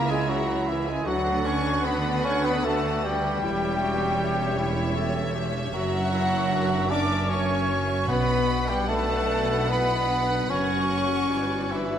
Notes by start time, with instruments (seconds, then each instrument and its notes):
Already playing: double bass section C#2, cello section C#3, viola section E4 A#4, clarinet E4, oboe A#4, violin section E5, flute A#5
0.08 french horn section G#3, bassoon G#3, oboe G#4, trumpet G#4, violin section G#5, flute G#5
0.28 french horn section F#3, bassoon F#3, oboe F#4, trumpet F#4, violin section F#5, flute F#5
0.67 french horn section E3, bassoon E3, oboe E4, trumpet E4, violin section E5, flute E5
0.86 french horn section G#3, bassoon G#3, oboe G#4, trumpet G#4, violin section G#5, flute G#5
1.05 double bass section D2, cello section D3, french horn section F#3, bassoon F#3, clarinet D4, viola section D4 B4, oboe F#4, trumpet F#4, violin section F#5, flute F#5
1.43 french horn section C#4, bassoon C#4, trumpet C#5, oboe C#5, violin section C#6
1.48 flute C#6
1.84 bassoon B3, french horn section B3, oboe B4, trumpet B4, violin section B5, flute B5
2.24 french horn section C#4, bassoon C#4, oboe C#5, trumpet C#5, violin section C#6, flute C#6
2.44 french horn section B3, bassoon B3, trumpet B4, oboe B4, violin section B5, flute B5
2.63 bassoon A3, french horn section A3, clarinet F#4, oboe A4, trumpet A4, violin section A5, flute A5
3.04 bassoon G3, french horn section G3, trumpet G4, oboe G4, violin section G5, flute G5
3.43 double bass section E1, cello section E2, viola section C#4 C#5, clarinet E4, violin section E5
3.81 clarinet F#4
4.20 clarinet G4
4.58 clarinet E4
4.96 clarinet A4
5.35 clarinet G4
5.73 double bass section F#1, cello section F#2, bassoon F#3, french horn section F#3, trumpet F#4, oboe F#4, clarinet F#4, viola section A#4, flute F#5, violin section F#5
6.13 clarinet E4
6.51 clarinet D4
6.90 clarinet C#4, french horn section D4, bassoon D4, oboe D5, trumpet D5, flute D6, violin section D6
7.29 bassoon C#4, french horn section C#4, clarinet F#4, oboe C#5, trumpet C#5, flute C#6, violin section C#6
8.07 double bass section B1, timpani B2, cello section B2, bassoon B3, french horn section B3, viola section D4 B4, oboe B4, trumpet B4, violin section F#5 B5, flute B5
8.68 bassoon G3, french horn section G3, trumpet G4, oboe G4, flute G5, violin section G5
8.88 bassoon A3, french horn section A3, trumpet A4, oboe A4, flute A5, violin section A5
9.68 bassoon B3, french horn section B3, clarinet E4, trumpet B4, oboe B4, flute B5, violin section B5
10.10 clarinet D4
10.49 double bass section F#1, cello section F#2, bassoon C#4, french horn section C#4, viola section F#4 A#4, clarinet F#4, trumpet C#5, oboe C#5, flute C#6, violin section C#6
11.31 double bass section G1, cello section G2, clarinet E4, viola section B4, violin section D5
11.71 bassoon E3, french horn section E3, clarinet D4, oboe E4, trumpet E4, violin section E5, flute E5